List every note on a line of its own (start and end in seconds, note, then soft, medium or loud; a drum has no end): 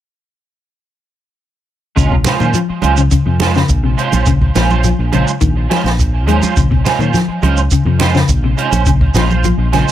1.96 2.22 A#1 medium
1.96 2.09 C#3 medium
1.96 2.14 G#3 medium
1.96 2.14 C#4 medium
1.96 2.14 F4 medium
1.96 muted clean electric guitar stroke medium
1.96 kick medium
1.96 closed hi-hat medium
1.96 shekere medium
2.12 2.36 C3 medium
2.12 kick medium
2.24 2.40 G#3 medium
2.24 2.40 C#4 medium
2.24 2.39 F4 medium
2.24 2.39 C5 medium
2.24 snare medium
2.24 closed hi-hat soft
2.24 high conga medium
2.24 shekere medium
2.40 2.52 A#2 medium
2.40 2.53 D#3 medium
2.40 2.58 C#4 soft
2.40 2.57 F4 soft
2.40 2.57 C5 soft
2.40 high conga medium
2.40 shekere soft
2.54 2.79 F3 medium
2.54 closed hi-hat medium
2.54 shekere medium
2.70 muted fingered electric bass stroke soft
2.82 3.08 C#2 medium
2.82 3.00 G#3 medium
2.82 3.00 C#4 medium
2.82 3.00 F4 medium
2.82 3.00 C5 medium
2.82 closed hi-hat soft
2.82 high conga medium
2.82 shekere soft
2.97 3.10 C#3 medium
2.97 shekere medium
3.11 3.24 C#3 medium
3.11 kick medium
3.11 closed hi-hat medium
3.11 shekere medium
3.26 3.63 F2 medium
3.26 3.51 C3 medium
3.40 3.58 G#3 medium
3.40 3.58 C#4 medium
3.40 3.59 F4 medium
3.40 3.59 C5 medium
3.40 snare medium
3.40 closed hi-hat soft
3.40 high conga medium
3.55 3.80 C#3 medium
3.55 snare medium
3.55 shekere soft
3.69 3.94 A#1 medium
3.69 kick medium
3.69 closed hi-hat medium
3.69 shekere medium
3.84 4.08 C3 medium
3.97 4.12 G#3 medium
3.97 4.13 C#4 medium
3.97 4.13 F4 medium
3.97 4.12 C5 medium
3.97 closed hi-hat soft
3.97 shekere soft
4.12 4.49 A#1 medium
4.12 4.30 C#4 soft
4.12 4.30 F4 soft
4.12 4.30 C5 medium
4.12 closed hi-hat soft
4.12 high conga medium
4.12 shekere medium
4.26 4.51 C#3 medium
4.26 kick medium
4.26 closed hi-hat medium
4.26 shekere medium
4.42 kick medium
4.55 4.93 A#1 medium
4.55 4.80 F3 medium
4.55 4.70 G#3 medium
4.55 4.70 C#4 medium
4.55 4.70 F4 medium
4.55 4.69 C5 medium
4.55 snare medium
4.55 closed hi-hat soft
4.55 high conga medium
4.55 shekere medium
4.70 4.88 C#4 soft
4.70 4.88 F4 soft
4.70 4.87 C5 soft
4.70 high conga medium
4.70 shekere soft
4.84 5.08 F3 medium
4.84 closed hi-hat medium
4.84 high conga medium
4.84 shekere medium
4.99 5.24 A#1 medium
5.12 5.37 C#3 medium
5.12 5.30 G#3 medium
5.12 5.30 C#4 medium
5.12 5.30 F4 medium
5.12 5.30 C5 medium
5.12 closed hi-hat soft
5.12 high conga medium
5.12 shekere soft
5.28 shekere medium
5.41 5.67 A#1 medium
5.41 5.65 D#3 medium
5.41 kick medium
5.41 closed hi-hat medium
5.41 shekere medium
5.70 5.95 F3 medium
5.70 5.88 G#3 medium
5.70 5.88 C#4 medium
5.70 5.88 F4 medium
5.70 5.88 C5 medium
5.70 snare medium
5.70 closed hi-hat soft
5.70 high conga medium
5.84 6.27 A#1 medium
5.84 snare medium
5.84 closed hi-hat soft
5.84 shekere soft
5.99 kick medium
5.99 closed hi-hat medium
5.99 shekere medium
6.27 6.40 D#2 medium
6.27 6.42 G#3 medium
6.27 6.52 G#3 medium
6.27 6.41 C#4 medium
6.27 6.41 F4 medium
6.27 6.40 C5 medium
6.27 closed hi-hat soft
6.27 high conga medium
6.27 shekere soft
6.41 6.60 C#4 soft
6.41 6.59 F4 soft
6.41 6.59 C5 soft
6.41 high conga medium
6.41 shekere medium
6.57 6.82 A#1 medium
6.57 6.69 C#3 medium
6.57 kick medium
6.57 closed hi-hat medium
6.57 shekere medium
6.71 6.95 C3 medium
6.71 kick medium
6.84 7.00 G#3 medium
6.84 6.99 C#4 medium
6.84 6.98 F4 medium
6.84 6.98 C5 medium
6.84 snare medium
6.84 closed hi-hat soft
6.84 high conga medium
6.84 shekere medium
6.99 7.11 A#2 medium
6.99 7.12 D#3 medium
6.99 7.17 C#4 soft
6.99 7.17 F4 soft
6.99 7.17 C5 soft
6.99 high conga medium
6.99 shekere soft
7.14 7.38 F3 medium
7.14 snare soft
7.14 closed hi-hat medium
7.14 high conga medium
7.14 shekere medium
7.28 muted fingered electric bass stroke soft
7.42 7.67 C#2 medium
7.42 7.60 G#3 medium
7.42 7.60 C#4 medium
7.42 7.60 F4 medium
7.42 7.60 C5 medium
7.42 closed hi-hat soft
7.42 high conga medium
7.42 shekere soft
7.57 muted clean electric guitar stroke medium
7.57 shekere medium
7.71 7.84 C#3 medium
7.71 kick medium
7.71 closed hi-hat medium
7.71 shekere medium
7.85 8.22 F2 medium
7.85 8.10 C3 medium
7.99 8.17 G#3 medium
7.99 8.18 C#4 medium
7.99 8.18 F4 medium
7.99 8.18 C5 medium
7.99 snare medium
7.99 closed hi-hat medium
7.99 high conga medium
8.14 8.39 C#3 medium
8.14 snare medium
8.14 shekere soft
8.28 8.54 A#1 medium
8.28 kick medium
8.28 closed hi-hat medium
8.28 shekere medium
8.44 8.68 C3 medium
8.57 8.72 G#3 medium
8.57 8.71 C#4 medium
8.57 8.71 F4 medium
8.57 8.70 C5 medium
8.57 closed hi-hat soft
8.57 shekere soft
8.71 9.09 A#1 medium
8.71 8.89 C#4 soft
8.71 8.89 C5 soft
8.71 muted clean electric guitar stroke soft
8.71 closed hi-hat soft
8.71 high conga medium
8.71 shekere medium
8.86 9.11 C#3 medium
8.86 kick medium
8.86 closed hi-hat medium
8.86 shekere medium
9.01 kick medium
9.14 9.52 A#1 medium
9.14 9.40 F3 medium
9.14 9.29 G#3 medium
9.14 9.30 C#4 medium
9.14 9.28 F4 medium
9.14 9.28 C5 medium
9.14 snare medium
9.14 closed hi-hat soft
9.14 high conga medium
9.14 shekere medium
9.29 9.46 F4 soft
9.29 9.46 C5 soft
9.29 high conga medium
9.29 shekere soft
9.44 9.68 F3 medium
9.44 closed hi-hat medium
9.44 high conga medium
9.44 shekere medium
9.58 9.82 A#1 medium
9.72 9.92 C#3 medium
9.72 9.90 G#3 medium
9.72 9.90 C#4 medium
9.72 9.90 F4 medium
9.72 9.90 C5 medium
9.72 snare soft
9.72 closed hi-hat soft
9.72 high conga medium
9.72 shekere soft
9.89 shekere medium